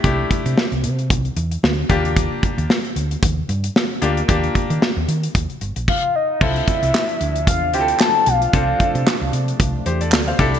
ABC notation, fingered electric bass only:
X:1
M:4/4
L:1/16
Q:"Swing 16ths" 1/4=113
K:Ddor
V:1 name="Fingered electric bass" clef=bass
C,,2 z C, z C,, C,2 C,,2 E,,2 D,,2 _E,,2- | _E,,2 z E,, z2 D,,2 E,,2 G,,2 z2 D,,2 | _E,,2 z _E, z E,, E,2 E,, z G,,, _B,,, z4 | C,,2 z C,, z2 D,,2 E,,2 D,,2 z2 B,,,2 |
C,,2 z C, z C,, C,2 C,,2 E,,2 D,,2 C,,2 |]